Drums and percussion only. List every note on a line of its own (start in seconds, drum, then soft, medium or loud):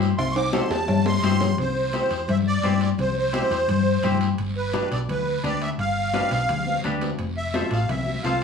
0.01 short guiro medium
0.18 cowbell medium
0.18 high conga soft
0.18 high timbale medium
0.18 long guiro medium
0.36 high timbale medium
0.53 cowbell medium
0.53 high conga loud
0.53 high timbale loud
0.53 short guiro medium
0.71 low timbale loud
0.71 short guiro medium
0.88 cowbell medium
0.88 high conga soft
0.88 low conga medium
0.88 low timbale medium
0.88 long guiro medium
1.06 high conga medium
1.06 low timbale loud
1.23 cowbell medium
1.23 high conga loud
1.23 short guiro medium
1.41 low conga loud
1.41 low timbale medium
1.41 short guiro medium
1.58 high conga soft
1.58 low conga medium
1.58 high timbale medium
1.58 long guiro medium
1.93 high conga medium
1.93 high timbale medium
1.93 short guiro medium
2.11 high timbale medium
2.11 short guiro medium
2.28 high conga soft
2.28 low conga medium
2.28 high timbale medium
2.28 long guiro medium
2.62 high conga medium
2.62 high timbale medium
2.62 short guiro medium
2.81 high timbale medium
2.81 short guiro medium
2.98 high conga soft
2.98 low conga medium
2.98 high timbale medium
2.98 long guiro medium
3.33 high conga medium
3.33 high timbale medium
3.33 short guiro medium
3.51 high timbale medium
3.51 short guiro medium
3.68 high conga soft
3.68 low conga medium
3.68 high timbale medium
3.68 long guiro medium
4.03 high conga medium
4.03 low conga medium
4.03 high timbale medium
4.03 short guiro medium
4.21 high timbale medium
4.21 short guiro medium
4.38 high conga soft
4.38 high timbale medium
4.38 long guiro medium
4.73 high conga loud
4.73 high timbale medium
4.73 short guiro medium
4.92 high timbale medium
4.92 short guiro medium
5.09 high conga soft
5.09 low conga medium
5.09 high timbale medium
5.09 long guiro medium
5.44 high conga medium
5.44 high timbale medium
5.44 short guiro medium
5.62 high timbale medium
5.62 short guiro medium
5.79 high conga soft
5.79 high timbale medium
5.79 long guiro medium
6.13 high conga medium
6.13 high timbale medium
6.13 short guiro medium
6.31 high timbale medium
6.31 short guiro medium
6.48 high conga soft
6.48 low conga medium
6.48 high timbale medium
6.48 long guiro medium
6.67 high conga medium
6.84 high conga medium
6.84 high timbale medium
6.84 short guiro medium
7.01 high conga medium
7.01 high timbale medium
7.01 short guiro medium
7.19 high conga soft
7.19 high timbale medium
7.19 long guiro medium
7.54 high conga medium
7.54 high timbale medium
7.54 short guiro medium
7.71 high timbale medium
7.71 short guiro medium
7.89 high conga soft
7.89 low conga medium
7.89 high timbale medium
7.89 long guiro medium
8.06 high conga medium
8.24 high conga medium
8.24 high timbale medium
8.24 short guiro medium